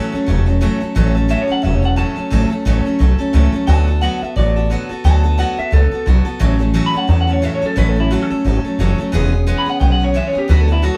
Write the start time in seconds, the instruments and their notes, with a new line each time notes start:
Already playing: steel-string acoustic guitar A2 E3 F#3 A3 C#4 A4, clean electric guitar A5
0.12 steel-string acoustic guitar F#3 A3 C#4 A4, muted upright bass stroke
0.26 upright bass E1, steel-string acoustic guitar F#3 A3 C#4 A4
0.46 steel-string acoustic guitar F#3 A3 C#4 A4
0.61 steel-string acoustic guitar A2 E3 F#3 A3 C#4 A4
0.80 steel-string acoustic guitar F#3 A3 C#4 A4, muted upright bass stroke
0.95 upright bass A1, steel-string acoustic guitar A2 E3 F#3 A3 C#4 A4
1.15 steel-string acoustic guitar F#3 A3 C#4 A4
1.28 steel-string acoustic guitar A2 E3 F#3 A3 C#4 A4, clean electric guitar E5
1.41 clean electric guitar C#5
1.48 steel-string acoustic guitar F#3 A3 C#4 A4, muted upright bass stroke
1.52 clean electric guitar F#5
1.62 upright bass E1, steel-string acoustic guitar F#3 A3 C#4 A4, clean electric guitar E5
1.75 clean electric guitar C#5
1.82 steel-string acoustic guitar F#3 A3 C#4 A4, clean electric guitar F#5
1.96 steel-string acoustic guitar A2 E3 F#3 A3 C#4 A4, clean electric guitar A5
2.16 steel-string acoustic guitar F#3 A3 C#4 A4, muted upright bass stroke
2.30 upright bass A1, steel-string acoustic guitar A2 E3 F#3 A3 C#4 A4
2.50 steel-string acoustic guitar F#3 A3 C#4 A4, muted upright bass stroke
2.65 upright bass A1, steel-string acoustic guitar A2 E3 F#3 A3 C#4 A4
2.85 steel-string acoustic guitar F#3 A3 C#4 A4, muted upright bass stroke
2.99 upright bass B1, steel-string acoustic guitar F#3 A3 C#4 A4
3.19 steel-string acoustic guitar F#3 A3 C#4 A4, muted upright bass stroke
3.33 upright bass C#2, steel-string acoustic guitar A2 E3 F#3 A3 C#4 A4
3.52 steel-string acoustic guitar F#3 A3 C#4 A4, muted upright bass stroke
3.67 upright bass D2, steel-string acoustic guitar D3 F#3 B3 F#4 A4, clean electric guitar A5
3.87 steel-string acoustic guitar B3 F#4 A4
4.01 steel-string acoustic guitar D3 F#3 B3 F#4 A4, clean electric guitar F#5
4.21 steel-string acoustic guitar B3 F#4 A4, clean electric guitar E5, muted upright bass stroke
4.36 upright bass A1, steel-string acoustic guitar F#3 B3 F#4 A4, clean electric guitar D5
4.56 steel-string acoustic guitar B3 F#4 A4
4.70 steel-string acoustic guitar D3 F#3 B3 F#4 A4
4.89 steel-string acoustic guitar B3 F#4 A4, muted upright bass stroke
5.04 upright bass D2, steel-string acoustic guitar D3 F#3 B3 F#4 A4, clean electric guitar A5
5.23 steel-string acoustic guitar B3 F#4 A4
5.38 steel-string acoustic guitar D3 F#3 B3 F#4 A4, clean electric guitar F#5
5.57 steel-string acoustic guitar B3 F#4 A4, clean electric guitar E5, muted upright bass stroke
5.71 upright bass C#2, steel-string acoustic guitar F#3 B3 F#4 A4, clean electric guitar A4
5.91 steel-string acoustic guitar B3 F#4 A4, muted upright bass stroke
6.06 upright bass B1, steel-string acoustic guitar D3 F#3 B3 F#4 A4
6.25 steel-string acoustic guitar B3 F#4 A4, muted upright bass stroke
6.39 upright bass A1, steel-string acoustic guitar A2 E3 F#3 A3 C#4 A4
6.59 steel-string acoustic guitar F#3 A3 C#4 A4
6.74 steel-string acoustic guitar A2 E3 F#3 A3 C#4 A4
6.86 clean electric guitar B5
6.94 steel-string acoustic guitar F#3 A3 C#4 A4, clean electric guitar F#5, muted upright bass stroke
7.07 upright bass E2, steel-string acoustic guitar F#3 A3 C#4 A4, clean electric guitar A5
7.21 clean electric guitar F#5
7.27 steel-string acoustic guitar F#3 A3 C#4 A4
7.32 clean electric guitar C#5
7.42 steel-string acoustic guitar A2 E3 F#3 A3 C#4 A4, clean electric guitar E5
7.55 clean electric guitar C#5
7.62 steel-string acoustic guitar F#3 A3 C#4 A4, muted upright bass stroke
7.66 clean electric guitar A4
7.76 upright bass A1, steel-string acoustic guitar A2 E3 F#3 A3 C#4 A4, clean electric guitar B4
7.89 clean electric guitar A4
7.96 steel-string acoustic guitar F#3 A3 C#4 A4
8.00 clean electric guitar E4
8.11 steel-string acoustic guitar A2 E3 F#3 A3 C#4 A4, clean electric guitar F#4
8.22 clean electric guitar A4
8.30 steel-string acoustic guitar F#3 A3 C#4 A4, muted upright bass stroke
8.44 upright bass G#1, steel-string acoustic guitar F#3 A3 C#4 A4
8.64 steel-string acoustic guitar F#3 A3 C#4 A4, muted upright bass stroke
8.79 upright bass F#1, steel-string acoustic guitar A2 E3 F#3 A3 C#4 A4
8.98 steel-string acoustic guitar F#3 A3 C#4 A4, muted upright bass stroke
9.12 upright bass E1, steel-string acoustic guitar E3 G#3 B3 C#4 G#4
9.32 steel-string acoustic guitar B3 C#4 G#4
9.47 steel-string acoustic guitar E3 G#3 B3 C#4 G#4
9.58 clean electric guitar B5
9.66 steel-string acoustic guitar B3 C#4 G#4, clean electric guitar F#5, muted upright bass stroke
9.80 upright bass B1, steel-string acoustic guitar G#3 B3 C#4 G#4, clean electric guitar G5
9.92 clean electric guitar F#5
10.00 steel-string acoustic guitar B3 C#4 G#4
10.04 clean electric guitar C#5
10.14 steel-string acoustic guitar E3 G#3 B3 C#4 G#4, clean electric guitar E5
10.27 clean electric guitar C#5
10.33 steel-string acoustic guitar B3 C#4 G#4, muted upright bass stroke
10.38 clean electric guitar G4
10.48 upright bass D2, steel-string acoustic guitar D3 F#3 B3 F#4 A4, clean electric guitar B4
10.61 clean electric guitar A4
10.67 steel-string acoustic guitar B3 F#4 A4
10.72 clean electric guitar E4
10.82 steel-string acoustic guitar D3 F#3 B3 F#4 A4, clean electric guitar F#4